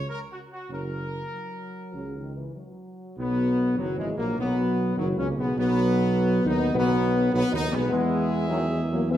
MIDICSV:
0, 0, Header, 1, 5, 480
1, 0, Start_track
1, 0, Key_signature, 5, "major"
1, 0, Tempo, 613497
1, 548, Time_signature, 4, 2, 24, 8
1, 2955, Tempo, 591716
1, 7332, End_track
2, 0, Start_track
2, 0, Title_t, "Trumpet section"
2, 0, Program_c, 0, 61
2, 76, Note_on_c, 0, 70, 81
2, 146, Note_off_c, 0, 70, 0
2, 242, Note_on_c, 0, 66, 63
2, 310, Note_off_c, 0, 66, 0
2, 400, Note_on_c, 0, 66, 53
2, 543, Note_off_c, 0, 66, 0
2, 554, Note_on_c, 0, 70, 73
2, 1970, Note_off_c, 0, 70, 0
2, 2485, Note_on_c, 0, 59, 86
2, 2924, Note_off_c, 0, 59, 0
2, 2957, Note_on_c, 0, 54, 74
2, 3117, Note_on_c, 0, 56, 71
2, 3118, Note_off_c, 0, 54, 0
2, 3190, Note_off_c, 0, 56, 0
2, 3277, Note_on_c, 0, 58, 73
2, 3428, Note_off_c, 0, 58, 0
2, 3451, Note_on_c, 0, 59, 81
2, 3896, Note_off_c, 0, 59, 0
2, 3927, Note_on_c, 0, 54, 75
2, 3999, Note_off_c, 0, 54, 0
2, 4087, Note_on_c, 0, 61, 77
2, 4159, Note_off_c, 0, 61, 0
2, 4255, Note_on_c, 0, 59, 67
2, 4400, Note_off_c, 0, 59, 0
2, 4415, Note_on_c, 0, 59, 97
2, 5099, Note_off_c, 0, 59, 0
2, 5129, Note_on_c, 0, 63, 92
2, 5368, Note_off_c, 0, 63, 0
2, 5378, Note_on_c, 0, 59, 91
2, 5818, Note_off_c, 0, 59, 0
2, 5852, Note_on_c, 0, 59, 100
2, 5997, Note_off_c, 0, 59, 0
2, 6007, Note_on_c, 0, 63, 101
2, 6153, Note_off_c, 0, 63, 0
2, 6165, Note_on_c, 0, 59, 87
2, 6322, Note_off_c, 0, 59, 0
2, 6332, Note_on_c, 0, 68, 86
2, 6332, Note_on_c, 0, 76, 84
2, 7249, Note_off_c, 0, 68, 0
2, 7249, Note_off_c, 0, 76, 0
2, 7285, Note_on_c, 0, 68, 65
2, 7287, Note_on_c, 0, 76, 70
2, 7332, Note_off_c, 0, 68, 0
2, 7332, Note_off_c, 0, 76, 0
2, 7332, End_track
3, 0, Start_track
3, 0, Title_t, "French horn section"
3, 0, Program_c, 1, 60
3, 540, Note_on_c, 1, 61, 44
3, 542, Note_on_c, 1, 54, 44
3, 712, Note_off_c, 1, 54, 0
3, 712, Note_off_c, 1, 61, 0
3, 1028, Note_on_c, 1, 54, 56
3, 1484, Note_off_c, 1, 54, 0
3, 1512, Note_on_c, 1, 49, 52
3, 1676, Note_off_c, 1, 49, 0
3, 1684, Note_on_c, 1, 51, 47
3, 1831, Note_off_c, 1, 51, 0
3, 1848, Note_on_c, 1, 52, 51
3, 1992, Note_off_c, 1, 52, 0
3, 2002, Note_on_c, 1, 54, 53
3, 2456, Note_off_c, 1, 54, 0
3, 2493, Note_on_c, 1, 59, 84
3, 2928, Note_off_c, 1, 59, 0
3, 2957, Note_on_c, 1, 54, 81
3, 3106, Note_off_c, 1, 54, 0
3, 3120, Note_on_c, 1, 56, 80
3, 3269, Note_off_c, 1, 56, 0
3, 3283, Note_on_c, 1, 58, 86
3, 3431, Note_off_c, 1, 58, 0
3, 3447, Note_on_c, 1, 59, 91
3, 3894, Note_off_c, 1, 59, 0
3, 3923, Note_on_c, 1, 54, 85
3, 4073, Note_off_c, 1, 54, 0
3, 4098, Note_on_c, 1, 61, 93
3, 4168, Note_off_c, 1, 61, 0
3, 4259, Note_on_c, 1, 59, 76
3, 4400, Note_off_c, 1, 59, 0
3, 4410, Note_on_c, 1, 59, 97
3, 5096, Note_off_c, 1, 59, 0
3, 5128, Note_on_c, 1, 63, 111
3, 5359, Note_on_c, 1, 59, 112
3, 5367, Note_off_c, 1, 63, 0
3, 5809, Note_off_c, 1, 59, 0
3, 5829, Note_on_c, 1, 59, 104
3, 5984, Note_off_c, 1, 59, 0
3, 5991, Note_on_c, 1, 63, 101
3, 6144, Note_off_c, 1, 63, 0
3, 6146, Note_on_c, 1, 59, 97
3, 6287, Note_off_c, 1, 59, 0
3, 6297, Note_on_c, 1, 59, 102
3, 6750, Note_off_c, 1, 59, 0
3, 6776, Note_on_c, 1, 54, 105
3, 6852, Note_off_c, 1, 54, 0
3, 6952, Note_on_c, 1, 56, 81
3, 7025, Note_off_c, 1, 56, 0
3, 7123, Note_on_c, 1, 58, 90
3, 7194, Note_off_c, 1, 58, 0
3, 7272, Note_on_c, 1, 59, 101
3, 7332, Note_off_c, 1, 59, 0
3, 7332, End_track
4, 0, Start_track
4, 0, Title_t, "Trombone section"
4, 0, Program_c, 2, 61
4, 537, Note_on_c, 2, 49, 50
4, 540, Note_on_c, 2, 54, 49
4, 709, Note_off_c, 2, 49, 0
4, 711, Note_off_c, 2, 54, 0
4, 1519, Note_on_c, 2, 49, 44
4, 1522, Note_on_c, 2, 54, 47
4, 1687, Note_off_c, 2, 49, 0
4, 1689, Note_off_c, 2, 54, 0
4, 2482, Note_on_c, 2, 54, 80
4, 2923, Note_off_c, 2, 54, 0
4, 2954, Note_on_c, 2, 51, 70
4, 3027, Note_off_c, 2, 51, 0
4, 3101, Note_on_c, 2, 52, 72
4, 3259, Note_off_c, 2, 52, 0
4, 3285, Note_on_c, 2, 54, 68
4, 3432, Note_off_c, 2, 54, 0
4, 3447, Note_on_c, 2, 54, 82
4, 3894, Note_off_c, 2, 54, 0
4, 3912, Note_on_c, 2, 51, 73
4, 3987, Note_off_c, 2, 51, 0
4, 4081, Note_on_c, 2, 58, 70
4, 4232, Note_off_c, 2, 58, 0
4, 4241, Note_on_c, 2, 56, 66
4, 4405, Note_off_c, 2, 56, 0
4, 4405, Note_on_c, 2, 54, 93
4, 5093, Note_off_c, 2, 54, 0
4, 5122, Note_on_c, 2, 59, 92
4, 5364, Note_off_c, 2, 59, 0
4, 5376, Note_on_c, 2, 54, 92
4, 5817, Note_off_c, 2, 54, 0
4, 5843, Note_on_c, 2, 54, 92
4, 5915, Note_off_c, 2, 54, 0
4, 5995, Note_on_c, 2, 59, 89
4, 6068, Note_off_c, 2, 59, 0
4, 6145, Note_on_c, 2, 56, 81
4, 6301, Note_off_c, 2, 56, 0
4, 6313, Note_on_c, 2, 56, 102
4, 6758, Note_off_c, 2, 56, 0
4, 6785, Note_on_c, 2, 51, 90
4, 6938, Note_off_c, 2, 51, 0
4, 6951, Note_on_c, 2, 52, 67
4, 7101, Note_off_c, 2, 52, 0
4, 7118, Note_on_c, 2, 54, 79
4, 7266, Note_off_c, 2, 54, 0
4, 7271, Note_on_c, 2, 56, 85
4, 7332, Note_off_c, 2, 56, 0
4, 7332, End_track
5, 0, Start_track
5, 0, Title_t, "Tuba"
5, 0, Program_c, 3, 58
5, 543, Note_on_c, 3, 30, 54
5, 948, Note_off_c, 3, 30, 0
5, 1516, Note_on_c, 3, 37, 47
5, 1918, Note_off_c, 3, 37, 0
5, 2485, Note_on_c, 3, 35, 82
5, 2955, Note_on_c, 3, 30, 71
5, 2967, Note_off_c, 3, 35, 0
5, 3108, Note_off_c, 3, 30, 0
5, 3113, Note_on_c, 3, 32, 73
5, 3265, Note_off_c, 3, 32, 0
5, 3277, Note_on_c, 3, 34, 68
5, 3428, Note_off_c, 3, 34, 0
5, 3440, Note_on_c, 3, 35, 78
5, 3890, Note_off_c, 3, 35, 0
5, 3922, Note_on_c, 3, 30, 82
5, 4073, Note_off_c, 3, 30, 0
5, 4082, Note_on_c, 3, 37, 82
5, 4233, Note_off_c, 3, 37, 0
5, 4243, Note_on_c, 3, 35, 70
5, 4394, Note_off_c, 3, 35, 0
5, 4405, Note_on_c, 3, 35, 100
5, 5094, Note_off_c, 3, 35, 0
5, 5122, Note_on_c, 3, 39, 94
5, 5348, Note_off_c, 3, 39, 0
5, 5363, Note_on_c, 3, 35, 92
5, 5811, Note_off_c, 3, 35, 0
5, 5845, Note_on_c, 3, 35, 104
5, 5917, Note_off_c, 3, 35, 0
5, 5999, Note_on_c, 3, 39, 89
5, 6149, Note_off_c, 3, 39, 0
5, 6158, Note_on_c, 3, 35, 87
5, 6307, Note_off_c, 3, 35, 0
5, 6320, Note_on_c, 3, 40, 85
5, 7332, Note_off_c, 3, 40, 0
5, 7332, End_track
0, 0, End_of_file